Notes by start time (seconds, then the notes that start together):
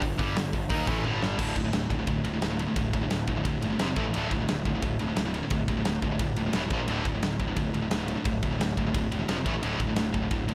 0.01 G1 G2 D3, kick, open hi-hat
0.18 G1 G2 D3 G3, kick, open hi-hat
0.35 G1 G2 D3, snare, open hi-hat
0.53 G1 G2 D3, kick, open hi-hat
0.69 D#2 D#3 A#3 D#4, kick, open hi-hat
0.87 A1 A2 E3 A3, kick, open hi-hat
1.04 G1 G2 D3 G3, high tom
1.22 snare
1.37 D1 D2 A2 D3, kick, crash
1.56 D1 D2 A2, kick, ride
1.64 D2 A2
1.72 D1 D2 A2, snare, ride
1.90 D1 D2 A2, kick, ride
1.99 D2 A2
2.07 D1 D2 A2, kick, ride
2.25 D1 D2 A2, ride
2.34 D2 A2
2.42 D1 D2 A2, snare, ride
2.50 D2 A2
2.59 D2 A2, ride
2.67 D2 A2
2.76 D1 D2 A2, kick, ride
2.93 D1 D2 A2, kick, ride
3.01 D2 A2
3.10 D1 D2 A2, snare, ride
3.27 D1 D2 A2, kick, ride
3.36 D2 A2
3.44 D1 D2 A2, kick, ride
3.61 G1 D2 A2, ride
3.70 D2 A2
3.79 F1 F2 C3 F3, snare, ride
3.88 F2 C3
3.96 A1 A2 E3 A3, kick, ride
4.06 A2 E3
4.13 D1 D2 A2 D3, ride
4.31 D1 D2 A2, kick, ride
4.40 D2 A2
4.48 D1 D2 A2, snare, ride
4.65 D1 D2 A2, kick, ride
4.75 D2 A2
4.82 D1 D2 A2, kick, ride
4.99 D1 D2 A2, ride
5.08 D2 A2
5.16 D1 D2 A2, snare, ride
5.26 D2 A2
5.34 D2 A2, ride
5.43 D2 A2
5.50 D1 D2 A2, kick, ride
5.68 D1 D2 A2, kick, ride
5.77 D2 A2
5.85 D1 D2 A2, snare, ride
6.02 D1 D2 A2, kick, ride
6.12 D2 A2
6.19 D1 D2 A2, kick, ride
6.36 D#1 D2 A2, ride
6.46 D2 A2
6.53 E1 E2 B2 E3, snare, ride
6.63 E2 B2
6.70 A#1 A#2 F3 A#3, kick, ride
6.81 A#2 F3
6.88 D1 D2 A2 D3, ride
7.05 D1 D2 A2, kick, ride
7.14 D2 A2
7.23 D1 D2 A2, snare, ride
7.40 D1 D2 A2, kick, ride
7.48 D2 A2
7.56 D1 D2 A2, kick, ride
7.73 D1 D2 A2, ride
7.82 D2 A2
7.90 D1 D2 A2, snare, ride
7.99 D2 A2
8.07 D2 A2, ride
8.15 D2 A2
8.24 D1 D2 A2, kick, ride
8.43 D1 D2 A2, kick, ride
8.51 D2 A2
8.59 D1 D2 A2, snare, ride
8.77 D1 D2 A2, kick, ride
8.86 D2 A2
8.94 D1 D2 A2, kick, ride
9.12 E1 D2 A2, ride
9.19 D2 A2
9.28 F1 F2 C3 F3, snare, ride
9.38 F2 C3
9.46 A1 A2 E3 A3, kick, ride
9.54 A2 E3
9.62 D1 D2 A2 D3, ride
9.79 D1 D2 A2, kick, ride
9.89 D2 A2
9.96 D1 D2 A2, snare, ride
10.14 D1 D2 A2, kick, ride
10.22 D2 A2
10.31 D1 D2 A2, kick, ride
10.48 D1 D2 A2, ride